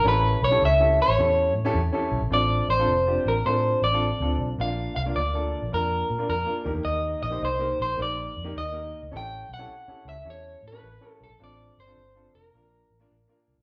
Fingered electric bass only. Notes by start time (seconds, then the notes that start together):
0.05 A1
0.42 B1
0.61 C#2
1.08 A1
1.18 E2
1.56 A2
1.74 E2
2.11 B1
2.22 A#1
2.31 A1
2.68 A1
2.87 F1
3.25 A1
3.45 A2
3.82 A1
4.20 D2
4.38 B1
4.58 A#1
4.96 C2
5.16 D2
5.62 A#1
5.73 F2
6.10 A#2
6.29 F2
6.66 D#2
6.75 E2
6.85 D#2
7.22 A#1
7.42 C2
7.80 A#1
7.99 A#1
8.37 F2
8.57 D#2
9.03 D2
9.13 A1
9.49 B1
9.88 muted fingered electric bass stroke
10.05 C#2
10.25 E2
10.63 A2
10.83 A1
11.21 B1
11.30 A#1
11.40 A1
11.77 G1
11.98 G1
12.34 F1
12.54 A#1
12.90 A1
13.11 A1
13.48 C2
13.58 B1